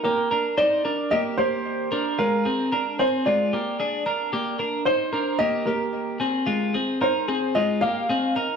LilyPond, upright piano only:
\new Staff \with { instrumentName = "Upright piano" } { \time 4/4 \key ees \major \tempo 4 = 112 bes'4 d''4 ees''8 c''4. | bes'4. c''8 d''4. r8 | r4 c''4 ees''8 bes'4 r8 | r4 c''4 ees''8 f''4 r8 | }